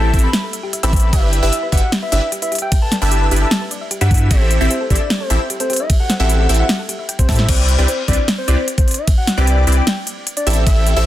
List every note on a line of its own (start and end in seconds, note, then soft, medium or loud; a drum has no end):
0.00 0.12 A1 medium
0.00 0.11 C4 medium
0.00 0.11 E4 medium
0.00 0.11 G4 medium
0.00 0.11 A4 medium
0.00 0.11 E5 loud
0.00 0.12 A5 loud
0.13 0.27 A1 loud
0.13 0.29 C4 medium
0.13 0.29 E4 medium
0.13 0.29 G4 medium
0.13 0.29 A4 medium
0.13 0.19 C5 medium
0.13 0.29 E5 loud
0.13 0.29 E5 medium
0.13 kick medium
0.13 closed hi-hat soft
0.19 closed hi-hat medium
0.24 0.29 E5 loud
0.24 0.45 B5 loud
0.33 0.39 G4 medium
0.33 snare loud
0.33 closed hi-hat medium
0.33 ride soft
0.43 0.47 A4 medium
0.53 0.57 E5 medium
0.53 closed hi-hat medium
0.63 0.69 G4 loud
0.73 0.76 E5 medium
0.73 closed hi-hat medium
0.83 1.11 A1 loud
0.83 1.11 C4 medium
0.83 1.11 E4 medium
0.83 1.11 G4 medium
0.83 1.11 A4 medium
0.83 0.91 C5 medium
0.83 1.11 E5 medium
0.83 1.14 B5 loud
0.83 closed hi-hat medium
0.93 0.98 C5 loud
0.93 kick loud
0.93 closed hi-hat soft
0.96 closed hi-hat medium
1.00 1.06 G5 medium
1.00 closed hi-hat medium
1.13 1.41 G1 loud
1.13 1.40 D4 medium
1.13 1.40 E4 medium
1.13 1.40 G4 medium
1.13 1.18 G4 medium
1.13 1.40 B4 medium
1.13 1.40 E5 medium
1.13 1.41 E5 loud
1.13 1.40 E5 medium
1.13 kick loud
1.13 closed hi-hat medium
1.13 ride medium
1.23 1.26 B4 medium
1.33 1.38 D5 medium
1.33 closed hi-hat medium
1.43 1.50 G1 loud
1.43 1.52 D4 loud
1.43 1.52 E4 medium
1.43 1.52 G4 medium
1.43 1.52 B4 medium
1.43 1.52 E5 loud
1.43 1.48 E5 medium
1.43 1.52 E5 loud
1.53 1.58 G4 medium
1.53 1.67 E5 medium
1.53 closed hi-hat medium
1.63 1.70 B4 medium
1.72 1.80 G1 medium
1.72 1.82 D4 medium
1.72 1.82 E4 medium
1.72 1.82 G4 medium
1.72 1.78 G4 medium
1.72 1.82 B4 medium
1.72 1.82 E5 loud
1.72 1.94 F#5 loud
1.72 kick medium
1.72 closed hi-hat soft
1.77 closed hi-hat medium
1.83 1.88 E5 loud
1.92 1.98 G4 medium
1.92 snare loud
1.92 closed hi-hat medium
1.92 ride soft
2.02 2.06 B4 medium
2.02 2.31 E5 medium
2.12 2.20 G1 loud
2.12 2.22 D4 medium
2.12 2.22 E4 medium
2.12 2.22 G4 medium
2.12 2.22 B4 medium
2.12 2.18 D5 medium
2.12 2.22 E5 medium
2.12 closed hi-hat medium
2.22 2.27 E5 medium
2.32 2.37 G4 medium
2.32 closed hi-hat medium
2.42 2.50 B4 medium
2.42 2.56 E5 medium
2.42 closed hi-hat medium
2.52 2.57 G4 medium
2.52 closed hi-hat soft
2.55 closed hi-hat medium
2.59 2.67 E5 loud
2.59 2.76 G5 medium
2.59 closed hi-hat medium
2.72 2.77 G4 medium
2.72 kick loud
2.72 closed hi-hat medium
2.72 ride medium
2.82 2.85 B4 medium
2.82 2.96 A5 medium
2.92 2.97 D5 medium
2.92 snare medium
2.92 closed hi-hat medium
3.02 3.29 G1 loud
3.02 3.29 D4 medium
3.02 3.29 E4 medium
3.02 3.29 G4 medium
3.02 3.29 B4 medium
3.02 3.29 E5 loud
3.02 3.07 E5 medium
3.02 3.30 A5 loud
3.11 3.17 G4 medium
3.11 closed hi-hat medium
3.22 3.29 B4 medium
3.31 3.45 G1 loud
3.31 3.47 D4 medium
3.31 3.47 E4 medium
3.31 3.47 G4 medium
3.31 3.37 G4 medium
3.31 3.47 B4 medium
3.31 3.47 E5 medium
3.31 closed hi-hat soft
3.36 closed hi-hat medium
3.41 3.47 E5 loud
3.41 3.63 A5 loud
3.51 3.57 G4 medium
3.51 snare loud
3.51 closed hi-hat medium
3.51 ride soft
3.61 3.65 B4 medium
3.71 3.77 D5 medium
3.71 closed hi-hat medium
3.81 3.86 E5 medium
3.91 3.96 G4 medium
3.91 closed hi-hat medium
4.01 4.29 G2 medium
4.01 4.28 D4 medium
4.01 4.28 E4 medium
4.01 4.28 G4 medium
4.01 4.09 B4 medium
4.01 4.28 B4 medium
4.01 4.28 E5 medium
4.01 4.32 F#5 loud
4.01 closed hi-hat medium
4.11 4.16 G4 medium
4.11 kick loud
4.11 closed hi-hat soft
4.14 closed hi-hat medium
4.17 4.26 E5 loud
4.17 closed hi-hat medium
4.31 4.59 A1 loud
4.31 4.58 C4 medium
4.31 4.58 E4 medium
4.31 4.36 G4 medium
4.31 4.58 G4 medium
4.31 4.58 A4 medium
4.31 4.59 C5 loud
4.31 4.58 E5 medium
4.31 kick loud
4.31 closed hi-hat medium
4.31 ride medium
4.41 4.44 A4 medium
4.51 4.56 C5 medium
4.51 closed hi-hat medium
4.61 4.68 A1 loud
4.61 4.70 C4 loud
4.61 4.70 E4 medium
4.61 4.70 G4 medium
4.61 4.70 A4 medium
4.61 4.66 E5 medium
4.61 4.70 E5 loud
4.70 4.76 G4 medium
4.70 4.85 C5 medium
4.70 closed hi-hat medium
4.81 4.88 A4 medium
4.90 4.98 A1 loud
4.90 5.00 C4 medium
4.90 5.00 E4 medium
4.90 4.96 G4 medium
4.90 5.00 G4 medium
4.90 5.00 A4 medium
4.90 5.22 D5 loud
4.90 5.00 E5 loud
4.90 kick medium
4.90 closed hi-hat soft
4.95 closed hi-hat medium
5.00 5.06 E5 loud
5.10 5.16 G4 medium
5.10 snare loud
5.10 closed hi-hat medium
5.10 ride soft
5.20 5.23 A4 medium
5.20 5.48 C5 loud
5.30 5.38 A1 loud
5.30 5.40 C4 medium
5.30 5.40 E4 medium
5.30 5.40 G4 medium
5.30 5.40 A4 medium
5.30 5.35 C5 medium
5.30 5.40 E5 medium
5.30 closed hi-hat medium
5.40 5.45 E5 medium
5.50 5.55 G4 medium
5.50 closed hi-hat medium
5.60 5.68 A4 medium
5.60 5.82 C5 loud
5.60 closed hi-hat medium
5.70 5.75 G4 medium
5.70 closed hi-hat soft
5.73 closed hi-hat medium
5.76 5.85 E5 loud
5.76 5.94 E5 medium
5.76 closed hi-hat medium
5.90 5.95 G4 medium
5.90 kick loud
5.90 closed hi-hat medium
5.90 ride medium
6.00 6.03 A4 medium
6.00 6.14 F#5 loud
6.10 6.15 C5 medium
6.10 snare medium
6.10 closed hi-hat medium
6.20 6.47 A1 loud
6.20 6.47 C4 medium
6.20 6.47 E4 medium
6.20 6.47 G4 medium
6.20 6.47 A4 medium
6.20 6.25 E5 medium
6.20 6.47 E5 loud
6.20 6.47 E5 medium
6.20 6.48 F#5 medium
6.29 6.35 G4 medium
6.29 closed hi-hat medium
6.40 6.47 A4 medium
6.49 6.63 A1 loud
6.49 6.65 C4 medium
6.49 6.65 E4 medium
6.49 6.55 G4 medium
6.49 6.65 G4 medium
6.49 6.65 A4 medium
6.49 6.65 E5 medium
6.49 6.65 E5 loud
6.49 closed hi-hat medium
6.54 closed hi-hat medium
6.59 6.65 E5 loud
6.59 6.81 F#5 medium
6.69 6.74 G4 medium
6.69 snare loud
6.69 closed hi-hat medium
6.69 ride soft
6.79 6.82 A4 medium
6.89 6.92 G4 medium
6.89 closed hi-hat medium
6.99 7.02 E5 medium
7.09 7.14 G5 medium
7.09 closed hi-hat medium
7.19 7.24 G4 medium
7.19 7.40 C5 loud
7.19 kick medium
7.19 closed hi-hat medium
7.29 7.47 A2 medium
7.29 7.46 C4 medium
7.29 7.46 E4 medium
7.29 7.46 G4 medium
7.29 7.46 A4 medium
7.29 7.46 E5 loud
7.29 7.34 A5 loud
7.29 kick loud
7.29 snare medium
7.29 closed hi-hat medium
7.29 open hi-hat medium
7.35 7.44 E5 medium
7.35 snare medium
7.35 closed hi-hat medium
7.49 7.77 C2 loud
7.49 7.76 C4 medium
7.49 7.76 E4 medium
7.49 7.76 G4 medium
7.49 7.76 B4 medium
7.49 7.77 C5 loud
7.49 7.76 D5 loud
7.49 7.76 D5 medium
7.49 kick loud
7.49 closed hi-hat medium
7.49 crash loud
7.49 ride medium
7.68 closed hi-hat medium
7.79 7.86 C2 medium
7.79 7.88 C4 loud
7.79 7.88 E4 medium
7.79 7.88 G4 loud
7.79 7.88 B4 medium
7.79 7.88 D5 loud
7.88 8.03 C5 medium
7.88 closed hi-hat medium
8.08 8.16 C2 loud
8.08 8.18 C4 medium
8.08 8.18 E4 medium
8.08 8.18 G4 medium
8.08 8.18 B4 medium
8.08 8.18 D5 loud
8.08 8.29 D5 loud
8.08 8.18 D5 loud
8.08 kick medium
8.08 closed hi-hat medium
8.13 closed hi-hat medium
8.28 snare loud
8.28 closed hi-hat medium
8.28 ride soft
8.38 8.66 C5 loud
8.48 8.56 C2 loud
8.48 8.58 C4 medium
8.48 8.58 E4 medium
8.48 8.58 G4 medium
8.48 8.58 B4 medium
8.48 8.58 D5 medium
8.48 closed hi-hat medium
8.68 closed hi-hat medium
8.78 8.99 C5 medium
8.78 kick loud
8.78 closed hi-hat medium
8.88 closed hi-hat medium
8.91 closed hi-hat medium
8.94 9.12 E5 medium
8.94 closed hi-hat medium
9.08 kick loud
9.08 closed hi-hat medium
9.08 ride soft
9.18 9.39 F#5 medium
9.27 snare medium
9.27 closed hi-hat medium
9.37 9.65 C2 loud
9.37 9.65 C4 medium
9.37 9.65 E4 medium
9.37 9.65 G4 medium
9.37 9.65 B4 medium
9.37 9.65 D5 loud
9.37 9.66 G5 medium
9.47 closed hi-hat medium
9.67 9.81 C2 loud
9.67 9.83 C4 medium
9.67 9.83 E4 medium
9.67 9.83 G4 medium
9.67 9.83 B4 medium
9.67 9.83 D5 loud
9.67 9.83 D5 medium
9.67 closed hi-hat medium
9.72 closed hi-hat medium
9.77 9.98 G5 loud
9.87 snare loud
9.87 closed hi-hat medium
9.87 ride soft
10.07 closed hi-hat medium
10.27 closed hi-hat medium
10.37 10.58 D5 loud
10.37 closed hi-hat medium
10.47 10.65 A1 loud
10.47 10.64 C4 loud
10.47 10.64 E4 medium
10.47 10.64 G4 medium
10.47 10.64 A4 medium
10.47 10.64 E5 loud
10.47 closed hi-hat medium
10.50 closed hi-hat medium
10.53 closed hi-hat medium
10.66 10.94 A1 loud
10.66 10.94 C4 medium
10.66 10.94 E4 medium
10.66 10.94 G4 medium
10.66 10.94 A4 medium
10.66 10.94 E5 medium
10.66 10.95 E5 loud
10.66 10.94 E5 medium
10.66 kick loud
10.66 closed hi-hat medium
10.66 ride soft
10.86 closed hi-hat medium
10.96 11.04 A1 medium
10.96 11.06 C4 loud
10.96 11.06 E4 medium
10.96 11.06 G4 medium
10.96 11.06 A4 loud
10.96 11.06 E5 loud